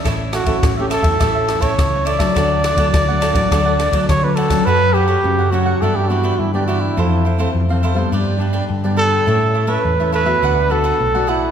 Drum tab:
RD |x-xxx-xxx-xxx-xx|x-xxx-xxx-xxx-xx|----------------|----------------|
SD |r-r-r-r-r-r-r--r|r-r-r-r-r-r-r--r|----------------|----------------|
BD |o--oo--oo--oo--o|o--oo--oo--oo--o|----------------|----------------|

RD |----------------|
SD |----------------|
BD |----------------|